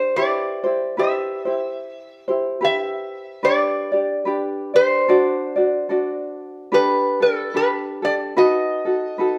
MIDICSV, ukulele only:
0, 0, Header, 1, 2, 480
1, 0, Start_track
1, 0, Key_signature, 1, "major"
1, 0, Tempo, 819672
1, 95, Time_signature, 4, 2, 24, 8
1, 5495, End_track
2, 0, Start_track
2, 0, Title_t, "Ukulele"
2, 0, Program_c, 0, 24
2, 0, Note_on_c, 0, 62, 60
2, 0, Note_on_c, 0, 67, 58
2, 0, Note_on_c, 0, 74, 60
2, 99, Note_off_c, 0, 62, 0
2, 99, Note_on_c, 0, 71, 71
2, 101, Note_off_c, 0, 67, 0
2, 101, Note_on_c, 0, 64, 63
2, 102, Note_off_c, 0, 74, 0
2, 103, Note_on_c, 0, 67, 66
2, 105, Note_on_c, 0, 72, 78
2, 365, Note_off_c, 0, 72, 0
2, 372, Note_off_c, 0, 67, 0
2, 372, Note_on_c, 0, 72, 55
2, 376, Note_off_c, 0, 71, 0
2, 377, Note_off_c, 0, 64, 0
2, 379, Note_on_c, 0, 67, 49
2, 384, Note_on_c, 0, 64, 43
2, 566, Note_off_c, 0, 64, 0
2, 566, Note_off_c, 0, 67, 0
2, 568, Note_on_c, 0, 71, 53
2, 572, Note_off_c, 0, 72, 0
2, 573, Note_on_c, 0, 64, 47
2, 576, Note_on_c, 0, 67, 62
2, 581, Note_on_c, 0, 72, 65
2, 843, Note_off_c, 0, 72, 0
2, 850, Note_off_c, 0, 67, 0
2, 850, Note_on_c, 0, 72, 44
2, 854, Note_off_c, 0, 64, 0
2, 854, Note_off_c, 0, 71, 0
2, 857, Note_on_c, 0, 67, 42
2, 861, Note_on_c, 0, 64, 39
2, 1327, Note_off_c, 0, 72, 0
2, 1334, Note_on_c, 0, 72, 50
2, 1337, Note_off_c, 0, 64, 0
2, 1339, Note_off_c, 0, 67, 0
2, 1339, Note_on_c, 0, 67, 47
2, 1346, Note_on_c, 0, 64, 48
2, 1524, Note_off_c, 0, 64, 0
2, 1527, Note_off_c, 0, 67, 0
2, 1527, Note_on_c, 0, 71, 55
2, 1529, Note_off_c, 0, 72, 0
2, 1532, Note_on_c, 0, 64, 51
2, 1534, Note_on_c, 0, 67, 63
2, 1536, Note_on_c, 0, 72, 56
2, 2001, Note_off_c, 0, 71, 0
2, 2007, Note_off_c, 0, 67, 0
2, 2008, Note_on_c, 0, 71, 66
2, 2009, Note_off_c, 0, 64, 0
2, 2011, Note_on_c, 0, 62, 71
2, 2014, Note_on_c, 0, 67, 79
2, 2015, Note_off_c, 0, 72, 0
2, 2018, Note_on_c, 0, 74, 72
2, 2287, Note_off_c, 0, 74, 0
2, 2294, Note_off_c, 0, 67, 0
2, 2294, Note_off_c, 0, 71, 0
2, 2294, Note_on_c, 0, 74, 56
2, 2295, Note_off_c, 0, 62, 0
2, 2301, Note_on_c, 0, 67, 45
2, 2304, Note_on_c, 0, 62, 37
2, 2489, Note_off_c, 0, 62, 0
2, 2490, Note_on_c, 0, 71, 57
2, 2492, Note_off_c, 0, 67, 0
2, 2493, Note_off_c, 0, 74, 0
2, 2496, Note_on_c, 0, 62, 55
2, 2499, Note_on_c, 0, 67, 62
2, 2501, Note_on_c, 0, 74, 60
2, 2767, Note_off_c, 0, 74, 0
2, 2772, Note_off_c, 0, 67, 0
2, 2774, Note_on_c, 0, 74, 39
2, 2775, Note_off_c, 0, 62, 0
2, 2775, Note_off_c, 0, 71, 0
2, 2779, Note_on_c, 0, 67, 40
2, 2782, Note_on_c, 0, 62, 42
2, 2973, Note_off_c, 0, 62, 0
2, 2973, Note_off_c, 0, 74, 0
2, 2975, Note_off_c, 0, 67, 0
2, 2976, Note_on_c, 0, 69, 75
2, 2980, Note_on_c, 0, 62, 82
2, 2981, Note_on_c, 0, 66, 87
2, 2984, Note_on_c, 0, 74, 88
2, 3248, Note_off_c, 0, 74, 0
2, 3255, Note_off_c, 0, 66, 0
2, 3255, Note_on_c, 0, 74, 51
2, 3259, Note_off_c, 0, 62, 0
2, 3259, Note_off_c, 0, 69, 0
2, 3262, Note_on_c, 0, 66, 47
2, 3266, Note_on_c, 0, 62, 44
2, 3446, Note_off_c, 0, 62, 0
2, 3450, Note_on_c, 0, 69, 50
2, 3451, Note_off_c, 0, 66, 0
2, 3453, Note_on_c, 0, 62, 62
2, 3454, Note_off_c, 0, 74, 0
2, 3458, Note_on_c, 0, 66, 67
2, 3461, Note_on_c, 0, 74, 63
2, 3929, Note_off_c, 0, 62, 0
2, 3931, Note_off_c, 0, 69, 0
2, 3933, Note_on_c, 0, 71, 67
2, 3936, Note_off_c, 0, 66, 0
2, 3936, Note_on_c, 0, 62, 77
2, 3939, Note_off_c, 0, 74, 0
2, 3939, Note_on_c, 0, 67, 75
2, 3942, Note_on_c, 0, 69, 66
2, 4211, Note_off_c, 0, 69, 0
2, 4217, Note_off_c, 0, 67, 0
2, 4218, Note_off_c, 0, 71, 0
2, 4218, Note_on_c, 0, 69, 54
2, 4219, Note_off_c, 0, 62, 0
2, 4224, Note_on_c, 0, 67, 43
2, 4229, Note_on_c, 0, 62, 38
2, 4411, Note_off_c, 0, 62, 0
2, 4413, Note_off_c, 0, 67, 0
2, 4415, Note_on_c, 0, 71, 50
2, 4416, Note_off_c, 0, 69, 0
2, 4418, Note_on_c, 0, 62, 56
2, 4422, Note_on_c, 0, 67, 61
2, 4425, Note_on_c, 0, 69, 58
2, 4691, Note_off_c, 0, 69, 0
2, 4697, Note_off_c, 0, 67, 0
2, 4698, Note_on_c, 0, 69, 49
2, 4699, Note_off_c, 0, 71, 0
2, 4701, Note_off_c, 0, 62, 0
2, 4704, Note_on_c, 0, 67, 45
2, 4710, Note_on_c, 0, 62, 40
2, 4896, Note_off_c, 0, 67, 0
2, 4896, Note_off_c, 0, 69, 0
2, 4898, Note_off_c, 0, 62, 0
2, 4898, Note_on_c, 0, 71, 77
2, 4900, Note_on_c, 0, 63, 86
2, 4903, Note_on_c, 0, 66, 79
2, 4908, Note_on_c, 0, 69, 83
2, 5176, Note_off_c, 0, 69, 0
2, 5181, Note_off_c, 0, 71, 0
2, 5182, Note_off_c, 0, 63, 0
2, 5183, Note_on_c, 0, 69, 44
2, 5184, Note_off_c, 0, 66, 0
2, 5190, Note_on_c, 0, 66, 42
2, 5194, Note_on_c, 0, 63, 38
2, 5374, Note_off_c, 0, 63, 0
2, 5376, Note_on_c, 0, 71, 53
2, 5377, Note_off_c, 0, 66, 0
2, 5379, Note_off_c, 0, 69, 0
2, 5381, Note_on_c, 0, 63, 52
2, 5384, Note_on_c, 0, 66, 54
2, 5388, Note_on_c, 0, 69, 66
2, 5495, Note_off_c, 0, 63, 0
2, 5495, Note_off_c, 0, 66, 0
2, 5495, Note_off_c, 0, 69, 0
2, 5495, Note_off_c, 0, 71, 0
2, 5495, End_track
0, 0, End_of_file